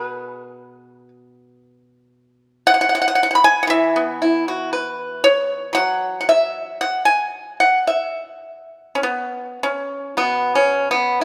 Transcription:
0.00 2.65 B2 medium
0.00 0.04 A#4 medium
0.00 1.08 B4 medium
2.67 2.73 F#5 loud
2.81 2.87 F#5 medium
2.89 2.94 F#5 medium
2.95 3.00 F#5 medium
3.02 3.07 F#5 medium
3.08 3.14 F#5 medium
3.15 3.22 F#5 medium
3.23 3.29 F#5 medium
3.31 3.35 F#5 medium
3.35 3.42 B5 medium
3.44 3.62 G#5 loud
3.63 3.67 F#5 medium
3.67 6.79 E3 medium
3.67 5.19 E5 loud
3.96 6.02 B3 medium
4.22 4.48 E4 soft
4.48 4.72 F#4 soft
4.73 6.20 B4 soft
5.24 5.72 C#5 medium
5.73 9.03 F#3 medium
5.73 6.18 F#5 loud
6.21 6.27 F#5 medium
6.29 6.77 E5 medium
6.81 7.05 F#5 medium
7.05 7.56 G#5 medium
7.60 7.86 F#5 medium
7.87 9.58 E5 medium
8.95 9.03 C#4 soft
9.03 9.58 B3 medium
9.63 10.16 C#4 medium
10.17 11.24 B2 soft
10.17 10.53 B3 medium
10.55 10.90 C#4 medium
10.91 11.21 B3 medium

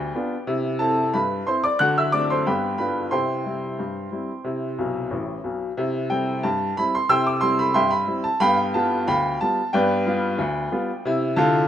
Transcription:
0.00 0.10 D2 medium
0.00 0.45 G4 medium
0.00 0.45 D5 medium
0.00 0.48 G5 medium
0.15 0.33 B3 medium
0.15 0.34 D4 soft
0.15 0.34 F4 medium
0.47 0.75 C3 medium
0.47 0.67 E4 medium
0.79 0.98 C4 medium
0.79 0.99 E4 medium
0.79 1.11 A4 medium
0.79 1.13 A5 medium
1.14 1.42 G2 medium
1.14 1.45 B4 soft
1.14 1.46 B5 medium
1.47 1.65 C4 soft
1.47 1.65 E4 medium
1.47 1.63 C5 medium
1.47 1.63 C6 medium
1.64 1.79 D5 medium
1.64 1.80 D6 medium
1.79 2.08 D3 medium
1.79 2.00 F#4 medium
1.79 1.95 F#5 medium
1.79 1.96 F#6 loud
1.98 2.12 E5 medium
1.98 2.13 E6 medium
2.12 2.31 A3 soft
2.12 2.31 C4 medium
2.12 2.32 D4 soft
2.12 2.28 D5 medium
2.12 2.29 D6 medium
2.30 2.46 C5 medium
2.30 2.46 C6 medium
2.47 2.74 G2 medium
2.47 2.66 B3 soft
2.47 2.77 B4 medium
2.47 2.77 G5 medium
2.47 2.77 B5 medium
2.78 2.97 G3 soft
2.78 2.97 D4 soft
2.78 2.97 F4 soft
2.78 3.10 B4 soft
2.78 3.12 B5 medium
3.11 3.40 C3 medium
3.11 3.31 E4 soft
3.11 5.41 C5 medium
3.11 5.41 G5 medium
3.11 5.45 C6 medium
3.46 3.64 G3 soft
3.46 3.65 C4 soft
3.46 3.64 E4 soft
3.79 4.07 G2 medium
4.12 4.30 G3 soft
4.12 4.31 C4 soft
4.12 4.31 E4 soft
4.44 4.73 C3 medium
4.44 4.65 E4 soft
4.78 5.04 B1 medium
4.78 5.03 B2 medium
5.11 5.36 A1 medium
5.11 5.36 A2 medium
5.44 5.69 B1 medium
5.44 5.69 B2 medium
5.77 6.06 C3 medium
5.77 5.97 E4 medium
6.10 6.29 G3 soft
6.10 6.29 C4 medium
6.10 6.29 E4 soft
6.10 6.43 G5 medium
6.43 6.72 G2 medium
6.43 6.77 A5 medium
6.77 6.96 G3 soft
6.77 6.97 C4 medium
6.77 6.96 E4 medium
6.77 6.94 B5 medium
6.95 7.09 C6 medium
7.09 7.38 C3 medium
7.09 7.29 E4 medium
7.09 7.26 G5 medium
7.09 7.25 C6 medium
7.09 7.26 E6 loud
7.27 7.43 D6 medium
7.41 7.60 G3 soft
7.41 7.61 C4 medium
7.41 7.61 E4 medium
7.41 7.58 C6 medium
7.59 7.76 B5 medium
7.74 8.03 G2 medium
7.74 7.91 E5 medium
7.74 7.91 G5 medium
7.74 7.92 C6 medium
7.91 8.24 B5 medium
8.07 8.26 G3 soft
8.07 8.26 C4 soft
8.07 8.26 E4 medium
8.24 8.41 A5 medium
8.40 8.69 G2 medium
8.40 8.61 B3 medium
8.40 8.57 F5 medium
8.40 8.56 G5 medium
8.40 8.57 B5 loud
8.57 8.74 G5 medium
8.74 8.93 G3 soft
8.74 8.93 B3 medium
8.74 8.93 F4 medium
8.74 9.07 A5 medium
9.08 9.36 D2 medium
9.08 9.38 F5 medium
9.08 9.38 G5 medium
9.08 9.40 B5 medium
9.41 9.59 G3 medium
9.41 9.59 B3 soft
9.41 9.60 F4 soft
9.41 9.73 A5 medium
9.73 10.01 G2 loud
9.73 9.93 B3 medium
9.73 11.01 B4 medium
9.73 11.01 D5 medium
9.73 11.04 G5 medium
10.07 10.24 G3 medium
10.07 10.24 B3 medium
10.07 10.25 F4 medium
10.39 10.66 D2 medium
10.72 10.89 G3 soft
10.72 10.90 B3 medium
10.72 10.90 F4 medium
11.05 11.31 C3 medium
11.05 11.32 E4 medium
11.36 11.63 D3 loud
11.36 11.64 F4 loud
11.36 11.68 A5 loud

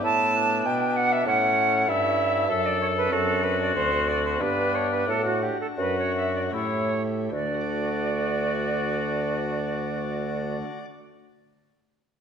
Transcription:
0.00 0.65 A2 medium
0.00 0.61 A2 medium
0.00 1.20 B3 medium
0.00 1.21 E4 medium
0.00 1.21 B4 medium
0.00 0.67 A5 loud
0.04 0.34 E4 medium
0.36 1.29 D4 medium
0.65 1.25 B2 medium
0.65 1.23 B2 medium
0.65 0.98 G5 loud
0.96 1.14 F#5 loud
1.12 1.26 E5 loud
1.22 1.90 A2 medium
1.22 2.44 C#4 medium
1.22 2.45 E4 medium
1.22 2.45 A4 medium
1.27 1.84 A2 medium
1.27 1.88 C#4 medium
1.27 1.90 F#5 loud
1.88 2.50 G2 medium
1.88 2.46 G2 medium
1.88 2.49 E4 medium
1.88 2.67 E5 loud
2.45 3.11 F#2 medium
2.45 3.07 D4 medium
2.45 3.09 A4 medium
2.50 3.08 F#2 medium
2.50 3.11 A4 loud
2.66 2.80 D5 medium
2.81 2.87 C#5 loud
2.97 3.14 B4 loud
3.08 3.74 F#2 medium
3.08 4.34 C4 medium
3.08 4.35 D4 medium
3.08 4.36 A4 medium
3.12 3.71 F#2 medium
3.12 4.43 F#4 loud
3.12 3.45 A4 loud
3.43 3.59 B4 loud
3.61 3.74 D5 loud
3.75 4.42 D2 medium
3.75 4.37 D2 medium
3.75 4.09 C5 loud
4.08 4.24 D5 loud
4.25 4.42 C5 medium
4.37 5.06 G2 medium
4.37 5.04 B3 medium
4.37 5.04 D4 medium
4.37 5.06 G4 medium
4.37 4.76 B4 loud
4.41 5.04 G2 medium
4.41 5.46 D4 medium
4.75 4.91 C#5 loud
4.91 5.08 B4 loud
5.06 5.52 A2 medium
5.06 5.50 A2 medium
5.06 6.48 D4 medium
5.06 6.49 F#4 medium
5.06 5.25 A4 loud
5.25 5.44 F#4 medium
5.42 5.60 G4 medium
5.61 5.67 A4 medium
5.78 6.49 F#2 medium
5.78 6.49 F#4 medium
5.78 5.97 B4 medium
5.99 6.15 C#5 medium
6.16 6.34 E5 medium
6.35 6.41 D5 medium
6.50 7.30 A2 medium
6.50 7.28 A3 soft
6.50 7.29 E4 medium
6.50 6.92 E4 medium
6.50 7.30 G4 soft
6.54 7.29 A2 medium
6.54 7.03 C#5 medium
7.32 10.57 D2 medium
7.32 10.57 D3 medium
7.32 10.57 F#4 medium
7.32 10.57 D5 medium
7.40 10.64 A3 medium
7.47 10.71 D4 medium
7.54 10.78 F#4 medium
7.61 10.85 D5 medium

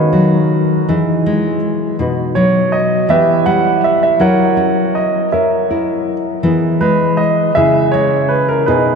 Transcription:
0.00 0.82 D#3 medium
0.00 0.89 B3 soft
0.00 0.87 D#4 medium
0.00 1.57 F#4 soft
0.00 0.83 A4 medium
0.00 1.55 B4 medium
0.13 0.87 F#3 soft
0.89 1.94 E3 medium
0.89 1.94 D#4 soft
0.89 1.95 E4 medium
0.89 1.99 G#4 medium
1.26 1.95 G#3 medium
1.99 3.05 B2 medium
1.99 3.06 D#4 medium
1.99 3.06 F#4 soft
1.99 3.06 B4 medium
2.35 3.09 F#3 soft
2.35 2.73 C#5 medium
2.72 3.06 D#5 medium
3.09 4.23 E3 medium
3.09 4.20 B3 medium
3.09 4.16 G4 soft
3.09 4.17 G4 medium
3.09 4.17 B4 medium
3.09 4.16 B4 medium
3.09 3.47 E5 medium
3.46 4.16 G3 soft
3.46 3.80 F#5 medium
3.84 4.01 E5 medium
4.03 4.21 E5 medium
4.20 6.43 F#3 medium
4.20 5.69 E4 soft
4.20 5.28 A#4 medium
4.20 5.32 A#4 medium
4.20 5.28 C#5 medium
4.20 4.97 F#5 medium
4.57 6.39 C#4 soft
4.95 5.29 D#5 medium
5.32 6.40 A#4 soft
5.32 5.70 A#4 soft
5.32 6.40 C#5 soft
5.32 6.12 E5 medium
5.70 6.39 E4 soft
5.70 6.40 A#4 medium
6.43 7.50 E3 medium
6.43 7.55 B3 soft
6.43 7.51 E4 soft
6.43 7.56 G#4 medium
6.81 7.50 G#3 soft
6.81 7.19 B4 medium
7.17 7.52 D#5 medium
7.55 8.67 C#3 medium
7.55 8.63 E4 soft
7.55 8.63 G#4 medium
7.55 7.93 E5 medium
7.92 8.63 G#3 soft
7.92 8.30 C#5 medium
8.29 8.48 B4 medium
8.49 8.67 A#4 medium
8.66 8.95 B2 medium
8.66 8.95 B3 soft
8.66 8.95 D#4 medium
8.66 8.95 D#4 soft
8.66 8.95 G#4 soft
8.66 8.95 B4 medium

